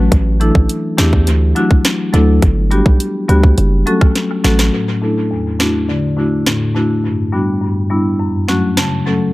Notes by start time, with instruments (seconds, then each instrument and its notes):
0.12 808-style bass A1, kick, closed hi-hat
0.40 marimba E3 A3 D4 E4 A4, closed hi-hat
0.55 808-style bass A1, kick
0.69 closed hi-hat
0.98 808-style bass E2, marimba E3 A3 D4 E4 G4, snare, closed hi-hat
1.13 kick
1.27 808-style bass D2, closed hi-hat
1.55 marimba F#3 A3 D4 E4 F#4, closed hi-hat
1.71 kick
1.85 snare, closed hi-hat
2.13 808-style bass D2, marimba F#3 A3 D4 E4 A4, closed hi-hat
2.42 808-style bass G1, kick, closed hi-hat
2.71 marimba G3 B3 D4 F#4 G4, closed hi-hat
2.86 808-style bass B1, kick
3.00 closed hi-hat
3.28 808-style bass D2, marimba G3 B3 D4 F#4 G4, closed hi-hat
3.43 kick
3.58 808-style bass F#1, closed hi-hat
3.86 marimba F#3 A3 C#4 F#4 A4, closed hi-hat
4.01 kick, cross-stick
4.15 snare, closed hi-hat
4.44 808-style bass A1, marimba F#3 A3 C#4 F#4 A4, snare, closed hi-hat
4.59 snare
4.73 marimba A2
5.01 marimba A3 D4 E4 A4
5.31 marimba E2
5.59 marimba A3 D4 E4 F#4, snare
5.89 marimba D3
6.17 marimba A3 D4 E4 F#4
6.46 marimba A2, snare
6.75 marimba A3 D4 E4 F#4
7.04 marimba G2
7.32 marimba G3 B3 D4 F#4
7.62 marimba G2
7.90 marimba G3 B3 D4 E4
8.19 marimba F#2
8.48 marimba F#3 A3 C#4 F#4, snare
8.77 marimba C#3 A5, snare
9.05 marimba F#3 A3 C#4 A4